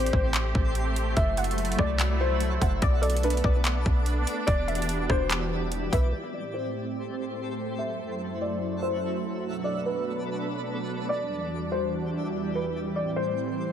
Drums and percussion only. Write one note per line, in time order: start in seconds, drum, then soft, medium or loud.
0.06 closed hi-hat medium
0.13 kick medium
0.34 clap loud
0.34 closed hi-hat medium
0.55 kick loud
0.75 closed hi-hat medium
0.96 closed hi-hat medium
1.17 kick loud
1.17 closed hi-hat medium
1.37 closed hi-hat medium
1.44 closed hi-hat medium
1.51 closed hi-hat medium
1.58 closed hi-hat medium
1.65 closed hi-hat medium
1.72 closed hi-hat medium
1.79 kick medium
1.79 cross-stick medium
1.99 clap loud
1.99 closed hi-hat medium
2.40 closed hi-hat medium
2.62 kick loud
2.62 closed hi-hat medium
2.82 kick loud
2.82 closed hi-hat medium
3.03 closed hi-hat medium
3.10 closed hi-hat medium
3.17 closed hi-hat medium
3.23 closed hi-hat medium
3.30 closed hi-hat medium
3.37 closed hi-hat medium
3.44 kick medium
3.65 clap loud
3.65 closed hi-hat medium
3.86 kick loud
4.06 closed hi-hat medium
4.27 closed hi-hat medium
4.48 kick loud
4.48 closed hi-hat medium
4.68 closed hi-hat soft
4.75 closed hi-hat medium
4.82 closed hi-hat medium
4.89 closed hi-hat medium
5.10 kick medium
5.10 cross-stick loud
5.30 clap loud
5.30 closed hi-hat medium
5.72 closed hi-hat medium
5.93 kick loud
5.93 closed hi-hat medium